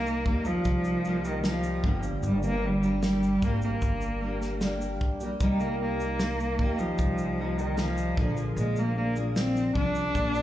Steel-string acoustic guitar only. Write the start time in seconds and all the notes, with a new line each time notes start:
Already playing: A#3 D#4 G4
0.25 G3 A#3 D#4 G4
1.05 G3 A#3 D#4 G4
1.44 G3 A#3 D#4 G4
1.84 G2 D3 G3 A#3 D4 G4
2.83 G3 A#3 D4 G4
3.42 G3 A#3 D4 G4
4.21 G3 A#3 D4 G4
4.61 G3 A#3 D4 G4
5.21 G3 A#3 D4 G4
5.40 C3 G3 A#3 D#4 G4
5.99 A#3 D#4 G4
6.60 G3 A#3 D#4 G4
7.38 G3 A#3 D#4 G4
7.78 G3 A#3 D#4
7.82 G4
8.18 A#2 D3 F3 A#3 D4 G#4
9.16 F3 A#3 D4 G#4
9.76 F3 A#3 D4 G#4